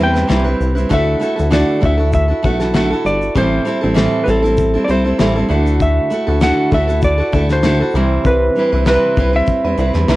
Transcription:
Already playing: steel-string acoustic guitar G3
0.00 analog synth bass E2, steel-string acoustic guitar C4 E4 B4, electric slide guitar G5
0.14 steel-string acoustic guitar G3 C4 E4 B4, snare, shaker
0.28 analog synth bass C2, steel-string acoustic guitar C3 E3 G3 C4 E4 B4, snare, shaker
0.45 steel-string acoustic guitar G3 C4 E4 B4
0.61 analog synth bass C2, shaker
0.75 steel-string acoustic guitar G3 C4 E4 B4, shaker
0.89 analog synth bass D2, steel-string acoustic guitar D3 A3 E4 F#4 A4, kick, shaker
0.94 electric slide guitar E5
1.20 steel-string acoustic guitar A3 E4 F#4 A4, shaker
1.36 analog synth bass D2, steel-string acoustic guitar E4 F#4 A4, shaker
1.50 steel-string acoustic guitar D3 A3 E4 F#4 A4, electric slide guitar D5, snare, shaker
1.80 analog synth bass D2, steel-string acoustic guitar A3 E4 F#4 A4, kick, shaker
1.85 electric slide guitar E5
1.97 steel-string acoustic guitar E4 F#4 A4
2.13 electric slide guitar E5, kick, shaker
2.28 steel-string acoustic guitar E4 F#4 A4
2.42 analog synth bass B1, steel-string acoustic guitar A3 E4 F#4 A4, kick, shaker
2.59 steel-string acoustic guitar E4 F#4 A4, snare, shaker
2.73 steel-string acoustic guitar D3 A3 E4 F#4 A4, snare, shaker
2.90 steel-string acoustic guitar E4 F#4 A4
3.05 analog synth bass G1, electric slide guitar D5, shaker
3.22 shaker
3.35 analog synth bass A1, steel-string acoustic guitar A2 E3 G3 C4 E4 A4, electric slide guitar C5, kick, shaker
3.65 steel-string acoustic guitar G3 C4 E4 A4, shaker
3.81 analog synth bass A1, steel-string acoustic guitar G3 C4 E4 A4
3.94 steel-string acoustic guitar A2 E3 G3 C4 E4 A4, snare, shaker
4.24 analog synth bass A1, steel-string acoustic guitar G3 C4 E4, electric slide guitar B4, shaker
4.29 steel-string acoustic guitar A4, electric slide guitar A4
4.42 steel-string acoustic guitar G3 C4 E4 A4, shaker
4.57 kick, shaker
4.74 steel-string acoustic guitar G3 C4 E4 A4
4.84 steel-string acoustic guitar G3, electric slide guitar D5
4.89 analog synth bass C2, steel-string acoustic guitar C4 E4 A4, electric slide guitar C5, shaker
5.04 steel-string acoustic guitar G3 C4 E4 A4
5.19 analog synth bass A1, steel-string acoustic guitar A2 E3 G3 C4 E4 A4, snare, shaker
5.36 steel-string acoustic guitar G3 C4 E4 A4
5.49 analog synth bass D2, steel-string acoustic guitar D3 A3 E4 F#4 A4, shaker
5.66 shaker
5.80 electric slide guitar E5, kick, shaker
6.10 steel-string acoustic guitar A3 E4 F#4 A4, shaker
6.27 analog synth bass D2, steel-string acoustic guitar E4 F#4 A4
6.41 steel-string acoustic guitar D3 A3 E4 F#4 A4, electric slide guitar F#5, snare, shaker
6.71 analog synth bass D2, steel-string acoustic guitar A3 E4 F#4 A4, electric slide guitar E5, kick, shaker
6.87 steel-string acoustic guitar E4 F#4 A4, shaker
7.02 electric slide guitar D5, kick, shaker
7.18 steel-string acoustic guitar E4 F#4 A4
7.32 analog synth bass D2, steel-string acoustic guitar A3 E4 F#4 A4, kick, shaker
7.49 steel-string acoustic guitar E4 F#4 A4, electric slide guitar C5, snare, shaker
7.63 steel-string acoustic guitar D3 A3 E4 F#4 A4, snare, shaker
7.80 steel-string acoustic guitar E4 F#4 A4
7.94 analog synth bass C2, steel-string acoustic guitar C3 E3 G3 C4 E4, shaker
8.25 analog synth bass C2, electric slide guitar B4, kick, shaker
8.55 steel-string acoustic guitar G3 C4 E4 B4, shaker
8.72 analog synth bass C2, steel-string acoustic guitar G3 C4 E4 B4
8.86 steel-string acoustic guitar C3 E3 G3 C4 E4 B4, electric slide guitar B4, snare, shaker
9.16 analog synth bass C2, steel-string acoustic guitar G3 C4 E4 B4, kick, shaker
9.33 steel-string acoustic guitar G3 C4 E4 B4, electric slide guitar E5
9.47 kick, shaker
9.64 analog synth bass E2, steel-string acoustic guitar G3 C4 E4 B4
9.78 analog synth bass C2, steel-string acoustic guitar G3 C4 E4 B4, shaker
9.94 analog synth bass E2, steel-string acoustic guitar G3 C4 E4 B4, snare, shaker
10.08 analog synth bass C2, steel-string acoustic guitar C3 E3 G3 C4 E4 B4, snare, shaker

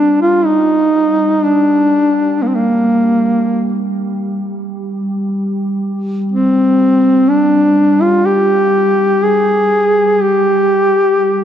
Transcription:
Already playing: ambient pad G3, duduk D4
0.22 duduk F4
0.46 duduk D#4
1.44 duduk D4
2.43 duduk A#3
2.48 duduk C4
2.55 duduk A#3
6.32 duduk C4
7.29 duduk D4
8.02 duduk F4
8.26 duduk G4
9.24 duduk G#4
10.23 duduk G4

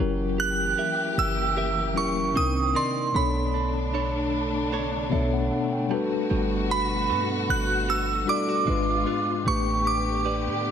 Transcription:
Already playing: tine electric piano F#3 C#4
0.00 808-style bass F#1, string section E3 A#3 G4, clean electric guitar F#3, tine electric piano E4 G4 A#4
0.38 clean electric guitar G4, synth bell F#6
0.78 clean electric guitar G4 A#4 E5
1.18 808-style bass F#1, synth bell E6
1.57 clean electric guitar G4 A#4 E5
1.94 808-style bass E1, tine electric piano F#3 C#4 E4 G4, clean electric guitar A#4, synth bell C#6
1.99 tine electric piano A#4
2.18 808-style bass F#1
2.33 808-style bass C2, tine electric piano C3 C4 D4 D#4, string section D#3 C4, clean electric guitar C4, synth bell D#6
2.38 tine electric piano A#4
2.75 clean electric guitar D#4 A#4 D5, synth bell C6
3.12 808-style bass B1, tine electric piano B2 B3 D4 A4, string section D3 A3 D4, clean electric guitar B3, synth bell B5
3.17 tine electric piano C#5
3.54 clean electric guitar D4
3.94 clean electric guitar D4 A4 C#5
4.72 clean electric guitar D4 A4 C#5
5.09 808-style bass B1, tine electric piano B2 B3 D4 A4 E5, clean electric guitar A4
5.14 tine electric piano C#5
5.33 tine electric piano F#5
5.51 tine electric piano F#5
5.73 tine electric piano G5
5.88 string section B2 F#4, tine electric piano G3 D4 F#4 A4 A5, clean electric guitar G3
5.93 tine electric piano B4
6.30 808-style bass G1, clean electric guitar G3
6.70 clean electric guitar B3, synth bell B5
7.09 808-style bass G2, clean electric guitar B3 F#4 A4
7.49 808-style bass G1, synth bell F#6
7.88 clean electric guitar B3 F#4 A4, synth bell E6
8.25 tine electric piano G3 D4 F#4 A4, clean electric guitar E4, synth bell D6
8.30 tine electric piano D5
8.49 clean electric guitar F#4
8.65 808-style bass G#1, tine electric piano G#2 G#3 D4 F4, string section B2 G#3 F4, clean electric guitar G#3
8.70 tine electric piano B4
9.06 clean electric guitar D4 F4 B4
9.44 808-style bass A1, tine electric piano A2 A3 D4 G4, string section D3 B3 G4, clean electric guitar A3
9.48 tine electric piano B4, synth bell C#6
9.85 clean electric guitar G4, synth bell D6
10.25 clean electric guitar G4 B4 D5
10.47 808-style bass A2

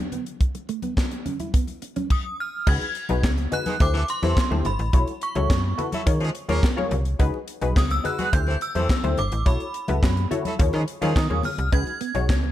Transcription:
0.12 clean electric guitar B3, closed hi-hat, low conga
0.26 closed hi-hat
0.41 kick, closed hi-hat
0.55 muted clean electric guitar stroke, closed hi-hat, muted conga
0.69 clean electric guitar A3, closed hi-hat
0.82 clean electric guitar B3, closed hi-hat, high conga
0.97 kick, snare, clap, muted conga
1.11 closed hi-hat, muted conga
1.26 clean electric guitar C#4, closed hi-hat, high conga, low conga
1.40 clean electric guitar E4, closed hi-hat, high conga
1.54 clean electric guitar B3, kick, closed hi-hat, muted conga
1.67 closed hi-hat, muted conga
1.82 muted clean electric guitar stroke, closed hi-hat
1.96 clean electric guitar C#4, closed hi-hat, high conga
2.10 synth bell D#6, kick, crash
2.40 synth bell F6
2.67 fm bass C#2, analog polysynth D#4 F#4 G#4 B4, synth bell G#6, kick, crash
2.81 closed hi-hat, muted conga
2.95 closed hi-hat
3.09 fm bass B1, analog polysynth D#4 F#4 G#4 B4, closed hi-hat, high conga
3.23 fm bass C#2, kick, snare, clap
3.38 closed hi-hat, muted conga
3.52 analog polysynth D#4 F#4 G#4 B4, synth bell F#6, closed hi-hat, low conga
3.66 horn section D#3 G#3 B3 G#4, closed hi-hat, high conga
3.80 fm bass D2, analog polysynth E4 G4 A4 C5, synth bell D6, kick, closed hi-hat, muted conga, low conga
3.94 horn section E3 A3 C4 A4, muted conga
4.08 synth bell C6, closed hi-hat
4.22 fm bass E2, horn section E3 A3 C4 A4, analog polysynth E4 G4 A4 C5, closed hi-hat, high conga
4.37 kick, snare, clap
4.51 fm bass D2, analog polysynth E4 G4 A4 C5, high conga
4.65 fm bass G1, synth bell B5, closed hi-hat, low conga
4.79 fm bass A1, closed hi-hat
4.93 fm bass B1, analog polysynth E4 F#4 A4 C#5, kick, closed hi-hat, muted conga
5.07 closed hi-hat, muted conga
5.21 synth bell C#6, closed hi-hat
5.35 fm bass C#2, analog polysynth E4 F#4 A4 C#5, closed hi-hat, high conga
5.50 fm bass F#2, kick, snare, clap, muted conga
5.78 analog polysynth E4 F#4 A4 B4, closed hi-hat, low conga
5.92 horn section F#3 A3 E4 A4, closed hi-hat, high conga
6.06 fm bass D#3, analog polysynth F4 G#4 A#4 C#5, kick, closed hi-hat, muted conga, low conga
6.20 horn section F3 G#3 C#4 G#4, closed hi-hat, muted conga
6.35 closed hi-hat
6.49 fm bass D#2, horn section F3 A#3 C#4 A#4, analog polysynth F4 G#4 A#4 C#5, closed hi-hat, high conga
6.63 kick, snare, clap, muted conga
6.77 analog polysynth F4 G#4 A#4 C#5, muted conga, high conga
6.91 fm bass C2, closed hi-hat, low conga
7.05 closed hi-hat
7.19 fm bass C#2, analog polysynth D#4 F#4 G#4 B4, kick, closed hi-hat, muted conga
7.34 muted conga
7.48 closed hi-hat
7.61 fm bass B1, analog polysynth D#4 F#4 G#4 B4, closed hi-hat, high conga
7.76 fm bass C#2, synth bell D#6, kick, snare, clap
7.90 synth bell E6, closed hi-hat, muted conga
8.04 analog polysynth D#4 F#4 G#4 B4, synth bell F#6, closed hi-hat, low conga
8.19 horn section G#3 B3 F#4 B4, closed hi-hat, high conga
8.33 fm bass D2, analog polysynth E4 G4 A4 C5, synth bell G6, kick, closed hi-hat, muted conga, low conga
8.47 horn section E3 A3 C4 A4, muted conga
8.61 synth bell E6, closed hi-hat
8.75 fm bass E2, horn section E3 A3 C4 A4, analog polysynth E4 G4 A4 C5, closed hi-hat, high conga
8.89 kick, snare, clap, muted conga
9.03 fm bass D2, analog polysynth E4 G4 A4 C5, closed hi-hat, high conga
9.17 fm bass G1, synth bell D6, closed hi-hat, low conga
9.32 fm bass A1, closed hi-hat
9.46 fm bass B1, analog polysynth E4 F#4 A4 C#5, synth bell B5, kick, closed hi-hat, muted conga
9.60 closed hi-hat
9.74 closed hi-hat
9.88 fm bass C#2, analog polysynth E4 F#4 A4 B4, closed hi-hat, high conga
10.03 fm bass F#2, kick, snare, clap
10.17 closed hi-hat, muted conga
10.31 analog polysynth E4 F#4 A4 C#5, closed hi-hat, low conga
10.45 horn section F#3 A3 E4 A4, closed hi-hat, high conga
10.59 fm bass D#2, analog polysynth F4 G#4 A#4 C#5, kick, closed hi-hat, muted conga, low conga
10.73 fm bass D#3, horn section F3 G#3 C#4 G#4, closed hi-hat, muted conga
10.88 closed hi-hat
11.01 fm bass D#3, horn section F3 G#3 C#4 G#4, analog polysynth F4 G#4 A#4 C#5, closed hi-hat, high conga
11.16 fm bass D#3, synth bell D#6, kick, snare, clap
11.30 fm bass D#2, analog polysynth F4 G#4 A#4 C#5, high conga
11.43 synth bell F6, open hi-hat, low conga
11.58 fm bass C2, closed hi-hat
11.72 fm bass C#2, clean electric guitar C#4, analog polysynth D#4 F#4 G#4 B4, synth bell G#6, kick, closed hi-hat, muted conga
11.87 closed hi-hat, muted conga
12.01 clean electric guitar B3, closed hi-hat
12.14 fm bass B1, analog polysynth D#4 F#4 G#4 C#5, muted clean electric guitar stroke, closed hi-hat, high conga
12.29 fm bass C#2, muted clean electric guitar stroke, kick, snare, clap
12.43 clean electric guitar B3, muted conga

